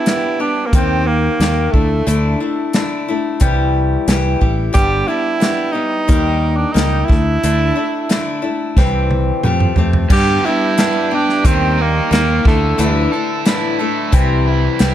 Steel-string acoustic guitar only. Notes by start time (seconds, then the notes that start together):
0.06 G3 B3 D4 G4
0.40 G3 B3 D4 G4
0.74 D#3 A#3 D#4 G4
1.41 D#3 A#3 D#4 G4
1.74 A3 D4 E4
2.07 D3 A3 D4 E4
2.40 A3 D4 E4
2.74 D3 A3 D4 E4
3.08 A3 D4 E4
3.40 C3 E3 G3 E4 G4
4.08 E3 G3 E4 G4
4.41 G3 E4 G4
4.73 G2 D3 G3 B3 D4 G4
5.08 G3 B3 D4 G4
5.40 G3 B3 D4 G4
5.73 G3 B3 G4
6.08 D#3 G3 A#3 D#4 G4
6.74 G3 A#3 D#4 G4
7.08 A3 D4 E4
7.44 D3 A3 D4 E4
7.75 A3 D4 E4
8.09 D3 A3 D4 E4
8.42 A3 D4 E4
8.77 C3 E3 G3 C4 G4
9.44 F3 A3 C4 G4
9.78 A3 C4 G4
10.10 G2 D3 G3 B3 D4 G4
10.45 G3 B3 D4 G4
10.78 G3 B3 D4 G4
11.11 G3 B3 D4 G4
11.45 D#3 G3 A#3 D#4 G4
12.11 G3 A#3 D#4 G4
12.46 A3 D4 E4
12.78 D3 E3 A3 D4 E4
13.13 A3 D4 E4
13.46 E3 A3 D4 E4
13.79 A3 D4 E4
14.12 C3 E3 G3 E4 G4
14.80 E3 G3 E4 G4